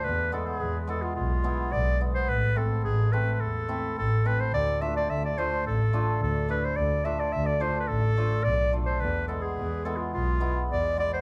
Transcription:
0.04 0.37 E2 medium
0.04 0.32 B4 medium
0.32 0.86 G#3 medium
0.32 0.46 B3 medium
0.32 0.46 E4 medium
0.32 0.46 A4 medium
0.46 0.57 A4 medium
0.57 0.93 E2 medium
0.57 0.77 G#4 medium
0.87 1.42 G#3 medium
0.87 1.02 B3 medium
0.87 1.02 E4 medium
0.87 1.04 A4 medium
1.02 1.15 F4 medium
1.16 1.50 B1 medium
1.16 1.74 F4 medium
1.44 1.99 G#3 medium
1.44 1.58 B3 medium
1.44 1.58 E4 medium
1.72 2.06 B1 medium
1.72 2.00 D5 medium
2.00 2.33 G#3 soft
2.00 2.15 B3 medium
2.00 2.15 E4 medium
2.14 2.30 C5 medium
2.28 2.62 A1 medium
2.28 2.59 B4 medium
2.56 2.70 A3 medium
2.56 2.70 C4 medium
2.56 2.70 E4 medium
2.56 2.84 A4 medium
2.84 3.18 A1 medium
2.84 3.14 G#4 medium
3.13 3.27 A3 medium
3.13 3.27 C4 medium
3.13 3.27 E4 medium
3.13 3.33 B4 medium
3.33 3.42 B4 medium
3.41 3.74 E2 medium
3.41 3.97 A4 medium
3.68 3.82 A3 medium
3.68 3.83 C4 medium
3.68 3.83 E4 medium
3.97 4.30 A1 medium
3.97 4.28 A4 medium
4.25 4.39 A3 medium
4.25 4.39 C4 soft
4.25 4.39 E4 medium
4.25 4.42 B4 medium
4.40 4.53 C5 medium
4.52 4.86 D2 medium
4.52 4.83 D5 loud
4.81 4.95 A3 medium
4.81 4.95 D4 medium
4.81 4.95 F4 medium
4.81 4.95 E5 medium
4.97 5.11 D5 medium
5.09 5.42 D2 medium
5.09 5.23 E5 medium
5.25 5.40 D5 medium
5.38 5.51 A3 medium
5.38 5.51 D4 medium
5.38 5.52 F4 medium
5.38 5.66 C5 medium
5.64 5.98 A1 medium
5.64 6.18 A4 medium
5.93 6.07 A3 medium
5.93 6.07 D4 medium
5.93 6.07 F4 medium
6.21 6.54 D2 medium
6.21 6.48 A4 medium
6.49 6.63 A3 medium
6.49 6.63 D4 soft
6.49 6.63 E4 medium
6.49 6.66 B4 medium
6.65 6.78 C5 medium
6.76 7.10 D2 medium
6.76 7.06 D5 medium
7.05 7.19 A3 medium
7.05 7.19 D4 medium
7.05 7.19 F4 medium
7.05 7.21 E5 medium
7.19 7.34 D5 medium
7.32 7.67 D2 medium
7.32 7.47 E5 medium
7.46 7.63 D5 medium
7.60 7.75 A3 medium
7.60 7.75 D4 medium
7.60 7.75 F4 medium
7.60 7.79 C5 medium
7.80 7.89 B4 medium
7.88 8.23 A1 medium
7.88 8.45 A4 medium
8.17 8.31 A3 medium
8.17 8.31 D4 soft
8.17 8.32 F4 medium
8.44 8.78 B1 medium
8.44 8.72 D5 loud
8.73 8.87 A3 medium
8.73 8.87 D4 medium
8.73 8.87 F4 medium
8.86 9.02 C5 medium
9.00 9.35 E2 medium
9.00 9.27 B4 medium
9.28 9.84 G#3 medium
9.28 9.43 B3 soft
9.28 9.43 E4 medium
9.28 9.43 A4 medium
9.42 9.87 G#4 medium
9.58 9.91 E2 medium
9.85 10.39 G#3 medium
9.85 10.00 B3 medium
9.85 10.00 E4 medium
9.85 9.99 A4 medium
9.97 10.12 F4 medium
10.14 10.48 B1 medium
10.14 10.66 F4 medium
10.40 10.96 G#3 medium
10.40 10.55 B3 medium
10.40 10.55 E4 medium
10.70 11.04 E2 medium
10.70 10.96 D5 medium
10.97 11.21 G#3 soft
10.97 11.12 B3 soft
10.97 11.12 E4 medium
10.97 11.12 D5 medium
11.13 11.21 C5 medium

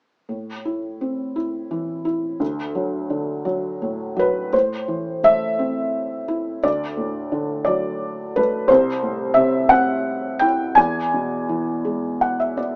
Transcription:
0.29 2.37 A2 soft
0.65 1.34 E4 soft
1.01 2.37 C4 soft
1.36 2.03 E4 soft
1.71 2.39 E3 soft
2.05 2.39 E4 soft
2.40 4.49 D2 medium
2.75 3.44 F#3 soft
3.10 4.49 D3 soft
3.45 4.15 F#3 soft
3.82 4.51 A2 soft
4.16 4.52 F#3 soft
4.16 4.55 B4 medium
4.52 6.59 A2 medium
4.52 5.20 C5 medium
4.88 6.25 E3 soft
5.23 6.59 A3 soft
5.23 6.67 E5 medium
5.59 6.60 C4 soft
6.28 6.62 E4 soft
6.63 8.66 D2 medium
6.63 7.63 D5 medium
6.97 8.33 A2 soft
7.32 8.66 D3 soft
7.65 8.67 F#3 soft
7.65 8.37 D5 medium
8.36 8.69 A3 medium
8.36 8.70 B4 medium
8.68 10.73 C2 medium
8.68 9.32 C5 medium
9.03 10.37 A2 soft
9.34 10.72 C3 soft
9.34 9.71 E5 medium
9.69 10.74 C4 medium
9.69 10.42 F#5 medium
10.39 10.76 E4 soft
10.39 10.73 G5 medium
10.75 12.76 E2 medium
10.75 12.16 G#5 medium
11.14 12.55 B2 soft
11.49 12.76 E3 soft
11.85 12.76 G#3 soft
12.21 12.38 F#5 medium
12.40 12.57 E5 soft
12.57 12.76 B3 soft
12.57 12.76 D5 soft

